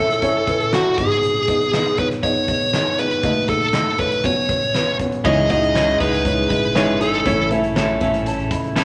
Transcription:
Already playing: A1 A2 C#4 E4 A4 C#5 D#5 E5
0.10 snare, closed hi-hat
0.22 C#4 E4 A4 C#5, kick, closed hi-hat
0.35 closed hi-hat
0.47 C#4 E4 A4 B4, kick, closed hi-hat
0.60 closed hi-hat
0.73 C#4 E4 F#4 A4 F#5, snare, clap
0.98 G#1 G#2 B3 D#4 G#4 D#5, kick, closed hi-hat
1.11 closed hi-hat
1.23 closed hi-hat
1.47 B3 D#4 G#4 D#5, kick, closed hi-hat
1.61 closed hi-hat
1.73 B3 D#4 G#4 D#5, snare, clap
1.86 closed hi-hat
1.97 B3 D#4 G#4 B4 C#5, kick, closed hi-hat
2.11 snare, closed hi-hat
2.23 B3 D#4 G#4 C#5 D#5, kick, closed hi-hat
2.36 closed hi-hat
2.48 B3 D#4 G#4 D#5, kick, closed hi-hat
2.61 closed hi-hat
2.73 B3 D#4 G#4 D#5, snare, clap
2.98 B3 D#4 G#4 B4 D#5, closed hi-hat
3.11 closed hi-hat
3.23 D#2 D#3 A3 D#4 F#4 D#5, kick, closed hi-hat
3.48 A3 D#4 F#4 G#4 A4, kick, closed hi-hat
3.61 closed hi-hat
3.73 A3 D#4 F#4 D#5, snare, clap
3.98 A3 D#4 F#4 B4 C#5, kick, closed hi-hat
4.12 closed hi-hat
4.24 B1 B2 B3 C#4 F#4 C#5, kick, closed hi-hat
4.49 B3 C#4 F#4 C#5, kick, closed hi-hat
4.62 closed hi-hat
4.75 B3 C#4 F#4 B4, snare, clap
4.87 closed hi-hat
4.99 B3 C#4 F#4 C#5, kick, closed hi-hat
5.12 closed hi-hat
5.24 C#2 C#3 E3 G#3 C#4 D#4 E4 G#4 C#5 D#5, kick, crash
5.49 G#3 C#4 D#4 E4 F#4 G#4 D#5, kick, closed hi-hat
5.63 closed hi-hat
5.75 G#3 C#4 D#4 E4 G#4 C#5, snare, clap
5.89 closed hi-hat
6.00 C#2 G#3 C#4 D#4 E4 G#4 B4, kick, closed hi-hat
6.13 snare, closed hi-hat
6.25 G#3 D#4 E4 C#5, kick, closed hi-hat
6.50 G#1 G#3 D#4 E4 D#5, kick, closed hi-hat
6.64 closed hi-hat
6.75 G#3 C#4 D#4 E4 G#4 C#5, snare, clap
7.00 G#3 C#4 D#4 E4 G#4 A4 C#5, closed hi-hat
7.14 closed hi-hat
7.25 A1 A2 E3 A3 C#4 E4 A4 C#5, kick, closed hi-hat
7.51 A3 C#4 E4 A4 E5, closed hi-hat
7.64 closed hi-hat
7.75 A3 C#4 E4 A4 C#5, snare, clap
8.01 A1 A3 C#4 E4 A4 E5, kick, closed hi-hat
8.14 closed hi-hat
8.26 C#5 A5, closed hi-hat
8.39 closed hi-hat
8.51 E1 D#5 B5, kick, closed hi-hat
8.64 closed hi-hat
8.76 F#1 A3 C#4 E4 A4 C#5 A5, snare, clap

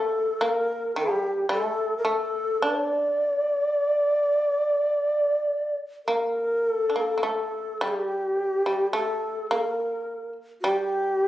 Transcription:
Already playing: A3 A4
0.41 A#3 A#4
0.96 G3 G4
1.49 A3 A4
1.98 A#4
2.05 A3 A4
2.62 D4 D5
6.06 A#3 A#4
6.73 A4
6.90 D4
6.96 A#3
7.18 A#3
7.23 A3 A4
7.81 G3 G4
8.66 G3
8.93 A3 A4
9.49 A#3 A#4
10.62 G3 G4

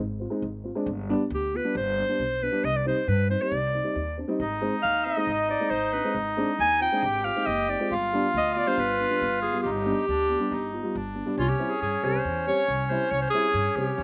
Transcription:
Already playing: G#1
0.20 C4 F4
0.30 G#3 C4 D#4
0.42 G#1
0.64 C4 F4
0.75 G#3 C4 D4
0.86 G1
1.09 G3 B3 D4
1.30 D2
1.35 G4
1.54 B3 F4 B4
1.64 G3 B3 D4
1.75 G1 C5
1.98 B3 D4
2.09 G3 B3 D4
2.20 B1
2.41 B3 D4 B4
2.51 G3 B3 D4
2.64 C2 D#5
2.77 D5
2.85 G3 C4 D#4 C5
3.08 G2 B4
3.29 C4 D#4 C5
3.41 G3 C4 D#4 D5
3.52 C2
3.73 C4 D#4
3.83 G3 C4 D#4
3.96 D#2
4.18 C4 D4
4.28 G3 C4 D#4
4.40 G#1 D#4
4.61 G#3 C4 D#4
4.83 D#2 F5
5.05 C4 D#4 D#5
5.16 G#3 C4 D#4
5.27 G#1
5.49 C4 D#4 D5
5.60 G#3 C4 D#4
5.71 G#1 C5
5.92 C4 D4 B4
6.04 G#3 C4 D#4
6.15 G#1
6.37 G#3 C4 D4
6.59 D#2 G#5
6.80 C4 F4 G5
6.92 G#3 C4 D4 G#4
7.03 G#1 G4
7.24 C4 F4 F5
7.35 G#3 C4 D#4
7.46 F#1 D#5
7.68 C4 D#4 D5
7.79 G#3 C4 F4
7.91 G1 F4
8.13 G3 B3 D4
8.34 D2 D#5
8.54 B3 F4 D5 D#5
8.66 G3 B3 D4 C5
8.78 G1 B4
8.99 B3 D4
9.09 G3 B3 D4
9.22 G1
9.42 B3 F4 G#4
9.53 G3 B3 F4
9.63 G1 D#4 G4
9.85 G3 B3 D4
10.08 D2 D4
10.29 B3 D4
10.39 G3 B3 D4
10.51 G1 D#4
10.73 B3 F4
10.83 G3 B3 F4
10.95 G1 D4
11.14 B3 D4
11.26 G3 B3 D4
11.38 C2 C#4 F4
11.49 G4
11.58 G3 C4 E4
11.70 G#4
11.82 G2 G#4
12.03 C2 G3 C4 G4 C5
12.25 E2
12.47 G3 C4 G4 C#5
12.68 C2
12.86 G3 C#5
12.90 C4 E4 C5
13.11 C2 C#5
13.22 C5
13.30 G3 C4 G#4
13.35 E4
13.54 G2
13.76 C2 G3 C4 G4
13.98 E2 C4

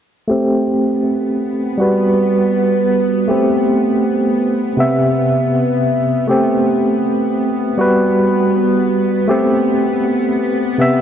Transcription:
0.27 A3 B3 C4 G4
1.78 G3 F#4 B4
3.28 A3 C4 G4
4.77 C3 B3 E5
6.27 A3 C4 G4
7.78 G3 F#4 B4
9.28 A3 C4 G4
10.78 C3 B3 E5

